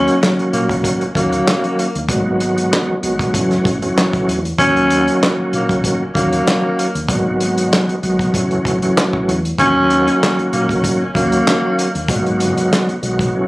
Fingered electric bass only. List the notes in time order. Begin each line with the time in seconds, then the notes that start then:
0.39 muted fingered electric bass stroke
0.53 A#1
1.16 D#2
1.95 D#2
2.09 G#1
2.89 muted fingered electric bass stroke
3.03 B1
3.34 F#1
3.66 F#1
4.28 E2
4.59 D#2
5.39 muted fingered electric bass stroke
5.53 A#1
6.16 D#2
6.95 D#2
7.09 G#1
7.89 muted fingered electric bass stroke
8.03 B1
8.34 F#1
8.66 F#1
9.28 E2
9.59 D#2
10.39 muted fingered electric bass stroke
10.53 A#1
11.15 D#2
11.95 D#2
12.09 G#1
12.89 muted fingered electric bass stroke
13.03 B1